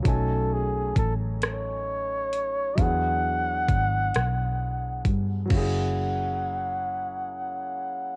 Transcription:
<<
  \new Staff \with { instrumentName = "Flugelhorn" } { \time 6/8 \key fis \minor \tempo 4. = 44 a'8 gis'8 a'8 cis''4. | fis''2~ fis''8 r8 | fis''2. | }
  \new Staff \with { instrumentName = "Grand piano" } { \time 6/8 \key fis \minor <fis a cis' dis' gis''>2. | <fis b d' e' gis'>2. | <fis ais cis' e' gis'>2. | }
  \new Staff \with { instrumentName = "Fingered electric bass" } { \clef bass \time 6/8 \key fis \minor b,,4 a,,2 | e,4 gis,,8 b,,4 g,8 | fis,,2. | }
  \new DrumStaff \with { instrumentName = "Drums" } \drummode { \time 6/8 <hh bd>4 <hh bd>8 <hh ss>4 hh8 | <hh bd>4 <hh bd>8 <hh ss>4 <hh bd>8 | <cymc bd>4. r4. | }
>>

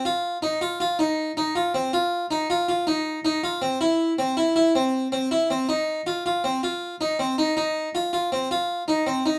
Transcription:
\new Staff \with { instrumentName = "Harpsichord" } { \time 5/4 \key c \phrygian \tempo 4 = 160 f'4 ees'8 f'8 f'8 ees'4 ees'8 f'8 c'8 | f'4 ees'8 f'8 f'8 ees'4 ees'8 f'8 c'8 | e'4 c'8 e'8 e'8 c'4 c'8 e'8 c'8 | ees'4 f'8 f'8 c'8 f'4 ees'8 c'8 ees'8 |
ees'4 f'8 f'8 c'8 f'4 ees'8 c'8 ees'8 | }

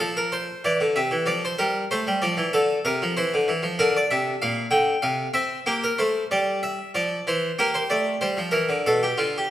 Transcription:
<<
  \new Staff \with { instrumentName = "Harpsichord" } { \time 3/4 \key f \major \tempo 4 = 95 << { a'16 bes'16 c''8 d''8 e''8 d''16 c''16 bes'8 | c''8 d''8 a'8 bes'8 c''4 | bes'16 d''16 e''8 f''8 g''8 f''8 e''8 | g'16 bes'16 c''8 d''8 e''8 d''8 c''8 |
bes'16 c''16 d''8 c''8 bes'8 a'16 g'16 f'16 g'16 | } \\ { r2. | r2. | d'2 r4 | r2. |
g'2 r4 | } >> }
  \new Staff \with { instrumentName = "Harpsichord" } { \clef bass \time 3/4 \key f \major f4 e16 d16 c16 e16 f8 g8 | a16 g16 f16 e16 d8 c16 f16 e16 d16 e16 f16 | d8 c8 bes,8 d8 c8 c'8 | bes8 a8 g4 f8 e8 |
bes8 a8 g16 f16 e16 d16 b,8 d8 | }
>>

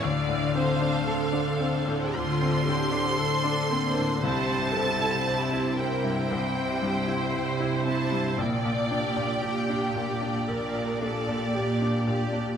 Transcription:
<<
  \new Staff \with { instrumentName = "Violin section" } { \time 4/4 \key d \minor \tempo 4 = 57 f''2 c'''2 | a''4. g''2 a''8 | g''2 d''2 | }
  \new Staff \with { instrumentName = "Violin section" } { \time 4/4 \key d \minor r8 <d' c''>4 <d' c''>4 <d' c''>4 <d' c''>8 | <e' c''>8 <e' c''>4 <e' c''>4 <e' c''>4 <e' c''>8 | r8 <g' d''>4 <g' d''>4 <g' d''>4 <g' d''>8 | }
  \new Staff \with { instrumentName = "Viola section" } { \time 4/4 \key d \minor d''8 c''8 a'4 f'8 g'8 a'8 bes8 | c''8 a'8 g'8 bes'8 c''2 | d''4 g'4 bes'8 a'8 g'4 | }
  \new Staff \with { instrumentName = "Grand piano" } { \time 4/4 \key d \minor d,16 a,16 c'16 d'16 a'16 d'16 c'16 a,16 d,16 c'16 a,16 d'16 a'16 d'16 c'16 a,16 | c,16 g,16 c'16 e'16 c''16 e'16 c'16 g,16 c,16 c'16 g,16 e'16 c''16 e'16 c'16 g,16 | bes,,16 bes,16 d'16 bes,16 g'16 d'16 bes,16 d'16 bes,,16 bes,16 d'16 bes,16 g'16 d'16 bes,16 d'16 | }
  \new Staff \with { instrumentName = "Harp" } { \time 4/4 \key d \minor d8 a8 d'8 c'8 d8 a8 d'8 c'8 | c8 g8 e'8 c'8 c8 g8 e'8 c'8 | bes,8 bes8 d'8 bes8 bes,8 d'8 bes8 d'8 | }
  \new Staff \with { instrumentName = "Cello section" } { \clef bass \time 4/4 \key d \minor d4 d4 d4 d4 | c4 c4 c4 c4 | bes,4 bes,4 bes,4 bes,4 | }
>>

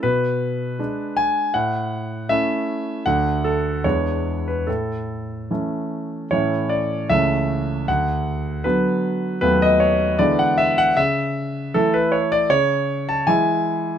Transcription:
<<
  \new Staff \with { instrumentName = "Grand piano" } { \time 2/4 \key a \major \tempo 4 = 78 b'4. gis''8 | fis''4 e''4 | fis''8 a'8 cis''8. b'16 | a'4 r4 |
cis''8 d''8 e''4 | fis''4 b'4 | b'16 dis''16 cis''8 d''16 fis''16 e''16 fis''16 | e''4 a'16 b'16 cis''16 d''16 |
\key cis \minor cis''8. a''16 gis''4 | }
  \new Staff \with { instrumentName = "Grand piano" } { \clef bass \time 2/4 \key a \major b,4 <gis d'>4 | a,4 <a cis' e'>4 | <d, a d'>4 <e, gis b d'>4 | a,4 <e a cis'>4 |
<a, e a cis'>4 <cis, e a cis'>4 | d,4 <d fis b>4 | <dis, fis a b>4 <d e gis b>4 | cis4 <e a e'>4 |
\key cis \minor cis4 <e gis e'>4 | }
>>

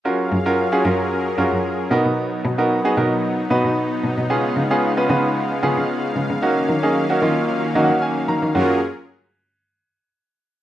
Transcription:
<<
  \new Staff \with { instrumentName = "Grand piano" } { \time 4/4 \key fis \major \tempo 4 = 113 << { r1 | r1 | r1 | r2 \tuplet 3/2 { r8. dis''16 fis''8 } gis''8 ais''8 |
r1 | } \\ { <cis' eis' fis' ais'>8 r16 <cis' eis' fis' ais'>8 <cis' eis' fis' gis'>16 <cis' eis' fis' ais'>8. r16 <cis' eis' fis' ais'>4 <b dis' fis' ais'>8~ | <b dis' fis' ais'>8 r16 <b dis' fis' ais'>8 <b dis' fis' gis'>16 <b dis' fis' ais'>8. r16 <b dis' fis' b'>4~ <b dis' fis' b'>16 r16 | <b cis' eis' gis'>8 r16 <b cis' eis' gis'>8 <b cis' eis' b'>16 <b cis' eis' b'>8. r16 <b cis' eis' gis'>4~ <b cis' eis' gis'>16 r16 | <ais cis' dis' fis'>8 r16 <ais cis' dis' gis'>8 <ais cis' dis' fis'>16 <ais cis' dis' eis'>8. r16 <ais cis' dis' fis'>4~ <ais cis' dis' fis'>16 r16 |
<ais cis' eis' fis'>8 r2. r8 | } >> }
  \new Staff \with { instrumentName = "Supersaw synth" } { \time 4/4 \key fis \major << { <fis cis' ais' eis''>2.~ <fis cis' ais' eis''>8 <fis dis'>8~ | <fis dis'>1 | <cis gis eis''>1 | <dis fis ais cis'>1 |
<fis cis' eis' gis' ais'>8 r2. r8 | } \\ { gis'2.~ gis'8 b8~ | b1~ | b1 | r1 |
r1 | } >> }
  \new Staff \with { instrumentName = "Cello" } { \clef bass \time 4/4 \key fis \major r8 fis,8 r8 fis,4 fis,16 fis,8 r16 b,16 b,16~ | b,8 b,8 r8 b,4 b,16 b,8 r16 b,16 b,16~ | b,8 cis8 r8 cis4 cis16 cis8 r16 cis16 cis16~ | cis8 dis8 r8 dis4 dis16 dis8 r16 dis16 dis16 |
fis,8 r2. r8 | }
>>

